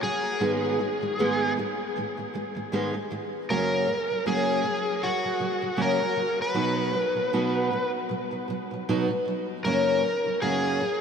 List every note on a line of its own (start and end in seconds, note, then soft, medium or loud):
0.01 0.33 F#2 soft
0.01 0.33 C#3 medium
0.01 0.34 F#3 medium
0.01 1.52 G#4 medium
0.40 0.78 G#2 medium
0.40 0.79 D#3 medium
0.40 0.79 G#3 medium
0.40 0.79 B3 medium
0.40 0.79 D#4 medium
0.40 0.79 G#4 medium
0.79 1.00 G#2 medium
0.79 1.01 D#3 soft
0.79 1.01 G#3 medium
1.01 1.18 G#2 medium
1.01 1.18 D#3 medium
1.01 1.19 G#3 medium
1.19 1.56 G#2 medium
1.19 1.57 D#3 medium
1.19 1.57 G#3 medium
1.19 1.57 B3 medium
1.19 1.57 D#4 medium
1.19 1.57 G#4 medium
1.57 1.88 G#2 medium
1.57 1.88 D#3 medium
1.57 1.89 G#3 medium
1.96 2.16 G#2 medium
1.96 2.17 D#3 medium
1.96 2.17 G#3 medium
2.17 2.32 G#2 soft
2.17 2.33 D#3 soft
2.17 2.34 G#3 soft
2.34 2.54 G#2 medium
2.34 2.55 D#3 medium
2.34 2.55 G#3 medium
2.55 2.71 G#2 soft
2.55 2.71 D#3 soft
2.55 2.72 G#3 medium
2.72 2.92 G#2 medium
2.72 2.93 D#3 medium
2.72 2.93 G#3 medium
2.72 2.93 B3 medium
2.72 2.94 D#4 medium
2.72 2.93 G#4 medium
2.93 3.09 G#2 soft
2.93 3.10 D#3 soft
2.93 3.11 G#3 soft
3.11 3.42 G#2 medium
3.11 3.42 D#3 medium
3.11 3.42 G#3 medium
3.49 3.87 F#2 medium
3.49 3.87 C#3 medium
3.49 3.88 F#3 medium
3.49 3.88 A#3 medium
3.49 3.88 C#4 medium
3.49 3.88 F#4 medium
3.49 4.27 A#4 medium
3.88 4.08 F#2 soft
3.88 4.09 C#3 soft
3.88 4.09 F#3 medium
4.09 4.25 F#2 soft
4.09 4.25 C#3 soft
4.09 4.25 F#3 medium
4.26 4.61 F#2 medium
4.26 4.62 C#3 medium
4.26 4.63 F#3 medium
4.26 4.64 A#3 medium
4.26 4.65 C#4 medium
4.26 4.65 F#4 medium
4.26 5.06 G#4 medium
4.62 4.95 F#2 medium
4.62 4.95 C#3 medium
4.62 4.96 F#3 medium
5.02 5.22 F#2 soft
5.02 5.23 C#3 medium
5.02 5.24 F#3 medium
5.02 5.82 F#4 medium
5.23 5.37 F#2 soft
5.23 5.39 C#3 soft
5.23 5.40 F#3 soft
5.39 5.60 F#2 soft
5.39 5.61 C#3 medium
5.39 5.62 F#3 medium
5.61 5.75 F#2 soft
5.61 5.76 C#3 soft
5.61 5.76 F#3 soft
5.76 5.98 F#2 medium
5.76 5.99 C#3 medium
5.76 5.99 F#3 medium
5.76 5.99 A#3 medium
5.76 6.00 C#4 medium
5.76 6.00 F#4 medium
5.82 6.41 A#4 medium
6.00 6.15 F#2 soft
6.00 6.15 C#3 soft
6.00 6.16 F#3 soft
6.16 6.48 F#2 medium
6.16 6.48 C#3 medium
6.16 6.49 F#3 medium
6.42 7.90 B4 medium
6.54 6.92 B2 medium
6.54 6.93 F#3 medium
6.54 6.94 B3 medium
6.54 6.94 D#4 medium
6.54 6.94 F#4 medium
6.93 7.13 B2 soft
6.93 7.15 F#3 medium
7.15 7.32 B2 soft
7.15 7.32 F#3 soft
7.33 7.70 B2 medium
7.33 7.72 F#3 medium
7.33 7.72 B3 medium
7.33 7.72 D#4 medium
7.33 7.72 F#4 medium
7.72 8.03 B2 medium
7.72 8.04 F#3 medium
8.09 8.30 B2 medium
8.09 8.31 F#3 medium
8.31 8.47 B2 soft
8.31 8.49 F#3 soft
8.48 8.69 B2 medium
8.48 8.71 F#3 medium
8.71 8.88 B2 medium
8.71 8.88 F#3 medium
8.89 9.07 B2 medium
8.89 9.09 F#3 medium
8.89 9.09 B3 medium
8.89 9.09 D#4 medium
8.89 9.10 F#4 medium
9.08 9.24 B2 soft
9.08 9.27 F#3 soft
9.25 9.57 B2 medium
9.25 9.58 F#3 medium
9.65 10.02 F#2 medium
9.65 10.03 C#3 medium
9.65 10.03 F#3 medium
9.65 10.03 A#3 medium
9.65 10.04 C#4 medium
9.65 10.03 F#4 medium
9.65 10.37 A#4 medium
10.03 10.23 F#2 soft
10.03 10.25 F#3 medium
10.24 10.40 F#2 soft
10.24 10.40 C#3 medium
10.24 10.41 F#3 soft
10.41 10.78 F#2 medium
10.41 10.79 C#3 medium
10.41 10.80 F#3 medium
10.41 10.80 A#3 medium
10.41 10.80 C#4 medium
10.41 10.80 F#4 medium
10.41 11.01 G#4 medium
10.79 11.01 F#2 medium
10.79 11.01 C#3 medium
10.79 11.01 F#3 medium